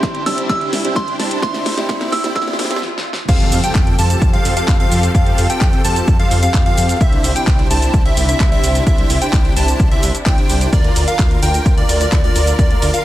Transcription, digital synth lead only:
3.29 3.61 F5 loud
3.64 3.96 G5 medium
3.98 4.31 A5 medium
4.33 4.54 F5 medium
4.57 4.77 F5 loud
4.80 5.12 F5 loud
5.15 5.47 F5 loud
5.50 5.82 G5 medium
5.85 6.17 A5 medium
6.19 6.40 F5 medium
6.43 6.63 F5 loud
6.66 6.98 F5 loud
7.01 7.33 E5 loud
7.36 7.68 G5 medium
7.70 8.03 A5 medium
8.05 8.26 E5 medium
8.29 8.49 E5 loud
8.52 8.84 E5 loud
8.87 9.19 E5 loud
9.22 9.54 G5 medium
9.56 9.89 A5 medium
9.91 10.12 E5 medium
10.26 10.70 G5 medium
10.73 11.05 D5 loud
11.08 11.40 F5 medium
11.43 11.75 G5 loud
11.77 11.98 D5 medium
12.01 12.21 D5 loud
12.24 12.56 D5 loud
12.59 12.91 D5 loud
12.94 13.05 F5 medium

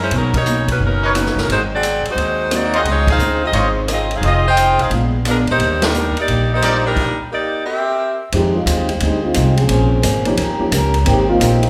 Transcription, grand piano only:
1.14 1.34 A#3 soft
1.14 1.34 C#4 soft
1.14 1.34 D#4 soft
1.14 1.35 F#4 medium
2.50 2.71 A#3 medium
2.50 2.71 C4 soft
2.50 2.72 D#4 soft
2.50 2.72 F#4 medium
3.52 4.05 G#3 medium
3.52 4.05 C4 medium
3.52 4.06 D#4 soft
3.52 4.06 F4 medium
4.89 5.42 G#3 soft
4.89 5.42 B3 soft
4.89 5.43 D4 soft
4.89 5.43 F4 medium
6.61 6.82 G3 medium
6.61 6.82 A#3 medium
6.61 6.83 D4 soft
6.61 6.83 F4 medium
8.32 8.53 F3 medium
8.32 8.53 G#3 medium
8.32 8.53 C4 medium
8.32 8.54 D#4 medium
8.32 8.54 G4 medium
10.25 10.37 F3 medium
10.25 10.37 A#3 medium
10.25 10.37 C#4 medium
10.25 10.37 D#4 medium
10.25 10.38 G4 medium
10.59 10.70 F3 medium
10.59 10.71 A#3 medium
10.59 10.71 C#4 soft
10.59 10.71 D#4 medium
10.59 10.71 G4 medium

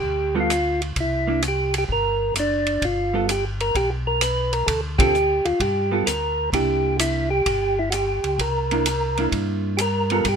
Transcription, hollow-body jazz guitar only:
0.35 0.49 G3 medium
0.35 0.49 B3 medium
0.35 0.49 F4 medium
0.35 0.50 A4 medium
1.27 1.42 A#3 medium
1.27 1.42 D4 medium
1.27 1.42 E4 medium
3.14 3.27 G3 medium
3.14 3.28 B3 medium
3.14 3.28 F4 medium
3.14 3.28 A4 medium
4.99 5.13 D3 soft
4.99 5.13 C4 medium
4.99 5.13 F4 medium
4.99 5.13 A4 medium
5.91 6.05 G3 medium
5.91 6.06 B3 medium
5.91 6.06 F4 medium
5.91 6.06 A4 medium
6.53 7.25 A#3 soft
6.53 7.25 D4 medium
6.53 7.25 E4 medium
8.72 8.85 A#3 soft
8.72 8.85 D4 medium
8.72 8.86 E4 medium
9.18 9.77 A#3 medium
9.18 9.77 D4 medium
9.18 9.77 E4 medium
10.11 10.25 G3 medium
10.11 10.25 B3 medium
10.11 10.25 F4 medium
10.11 10.25 A4 medium

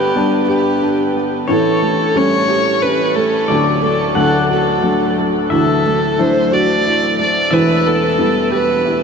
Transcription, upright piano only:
0.00 1.44 G1 medium
0.00 1.45 G2 medium
0.15 0.80 G3 soft
0.15 0.80 B3 soft
0.15 0.80 D4 medium
1.48 3.45 A1 soft
1.48 3.45 A2 medium
2.14 2.80 G3 soft
2.14 2.80 A3 soft
2.14 2.80 C#4 soft
3.50 4.13 D1 medium
3.50 4.14 D2 medium
4.15 5.46 D1 medium
4.15 5.47 D2 medium
4.82 5.48 F#3 soft
4.82 5.48 A3 soft
4.82 5.49 D4 medium
5.50 7.48 D1 medium
5.50 7.48 D2 medium
6.18 6.83 E3 soft
6.18 6.83 F#3 soft
6.18 6.83 D4 medium
7.52 9.03 E1 medium
7.52 9.03 E2 medium
8.18 8.83 E3 soft
8.18 8.83 G3 soft
8.18 8.83 B3 medium

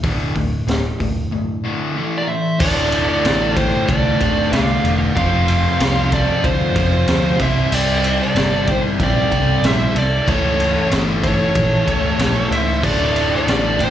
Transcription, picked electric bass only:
0.04 0.29 D1 medium
0.35 0.60 D1 medium
0.67 0.92 D1 medium
1.00 1.25 D1 medium
2.60 3.07 D1 medium
3.25 3.72 A1 medium
3.89 4.12 C2 medium
4.21 4.44 D1 medium
4.52 4.76 C2 loud
4.84 5.08 E1 medium
5.16 5.63 F1 loud
5.80 6.27 C2 medium
6.44 6.68 D2 medium
6.76 6.99 F1 medium
7.07 7.31 D2 loud
7.40 7.64 C2 medium
7.72 8.19 C2 medium
8.35 8.82 G1 medium
9.00 9.23 A#1 loud
9.32 9.55 C2 loud
9.62 9.86 A#1 medium
9.95 10.19 C2 loud
10.28 10.75 C#2 medium
10.91 11.38 G1 medium
11.56 11.79 A#1 loud
11.88 12.11 C#2 medium
12.19 12.43 A#1 loud
12.50 12.85 C#2 medium
12.84 13.30 D1 loud
13.47 13.90 A1 medium

